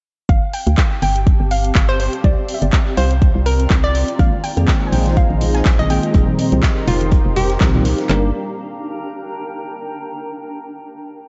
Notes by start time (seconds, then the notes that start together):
0.29 G1 C4 F5, kick, closed hi-hat
0.35 G4
0.53 G5, open hi-hat
0.63 D2 A5
0.67 closed hi-hat
0.78 kick, clap, closed hi-hat
0.87 F5
1.02 G1 G5, open hi-hat
1.16 closed hi-hat
1.27 kick, closed hi-hat
1.40 G1
1.51 F5, open hi-hat
1.64 closed hi-hat
1.75 G1, kick, clap, closed hi-hat
1.89 C5
2.00 C5, open hi-hat
2.13 closed hi-hat
2.24 C2 D5, kick, closed hi-hat
2.41 F4
2.49 open hi-hat
2.54 E5
2.62 G1 D5 A#5, closed hi-hat
2.73 kick, clap, closed hi-hat
2.97 C2 C5 F5, open hi-hat
3.11 closed hi-hat
3.22 kick, closed hi-hat
3.35 C2
3.46 A#4, open hi-hat
3.60 closed hi-hat
3.70 C2, kick, clap, closed hi-hat
3.84 D5
3.95 open hi-hat
4.08 closed hi-hat
4.19 A#1 D#3 G#3 A#3 C4 D#4 F4 G#4 C5 F5, kick, closed hi-hat
4.27 D#5
4.33 high conga
4.44 G#4 G5, closed hi-hat, open hi-hat
4.57 F2 D#3 G#3 A#3 C4 G#4, closed hi-hat
4.68 kick, snare, clap, closed hi-hat
4.87 G#5
4.92 A#1 G5, open hi-hat, low conga
5.06 snare, closed hi-hat, high conga
5.17 F5, kick, closed hi-hat
5.30 A#1, high conga
5.41 closed hi-hat, open hi-hat, low conga
5.54 G#5, snare, closed hi-hat
5.65 A#1, kick, snare, clap, closed hi-hat
5.79 D#5, closed hi-hat, high conga, low conga
5.90 D#3 G#3 A#3 C4 G#4 G5, closed hi-hat, open hi-hat
6.03 closed hi-hat
6.14 F1 A#2 D#3 F3 G3 C4 D#4 G4 A#4 C5, kick, closed hi-hat
6.28 high conga
6.38 G4, closed hi-hat, open hi-hat
6.52 C2 A#2 D#3 F3 G3 C4, closed hi-hat
6.63 kick, snare, clap, closed hi-hat
6.88 F1 F4, closed hi-hat, open hi-hat, low conga
7.01 closed hi-hat, high conga
7.11 kick, closed hi-hat
7.25 F1
7.36 G4, closed hi-hat, open hi-hat, low conga
7.49 snare, closed hi-hat
7.60 C2 A#2 D#3 F3 G3 C4, kick, snare, clap, closed hi-hat
7.74 A#2 D#3 F3 G3 C4, low conga
7.85 snare, closed hi-hat, open hi-hat
7.98 snare, closed hi-hat
8.09 G1 G3 A#3 D4 G4 A#4, snare, clap
8.18 A#4
8.25 G5
8.32 A#5